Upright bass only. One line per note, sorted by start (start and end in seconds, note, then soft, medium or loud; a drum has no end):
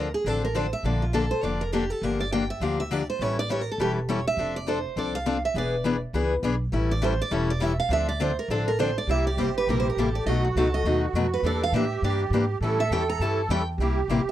0.00 0.13 D2 medium
0.24 0.72 A1 medium
0.83 1.31 A#1 medium
1.43 1.90 F1 medium
2.02 2.49 G1 medium
2.60 3.08 D2 medium
3.19 3.67 A1 medium
3.78 4.25 E1 medium
4.37 4.84 F1 medium
4.96 5.43 C2 medium
5.54 6.02 E1 medium
6.13 6.39 C#2 medium
6.43 6.68 B1 medium
6.73 7.20 A1 medium
7.31 7.79 E1 medium
7.89 8.37 D2 loud
8.48 8.96 A1 medium
9.07 9.36 C2 medium
9.37 9.66 G1 medium
9.67 9.96 A#1 medium
9.97 10.25 A1 medium
10.26 10.55 B1 medium
10.55 10.83 C#2 medium
10.83 11.13 D#2 medium
11.13 11.42 F2 medium
11.43 11.71 E2 medium
11.72 12.01 A2 medium
12.02 12.30 G2 medium
12.30 12.60 G#2 medium
12.61 12.90 A2 medium
12.90 13.19 E2 medium
13.19 13.48 G2 medium
13.49 13.77 E2 medium
13.78 14.07 C2 medium
14.08 14.24 A1 medium
14.25 muted upright bass stroke soft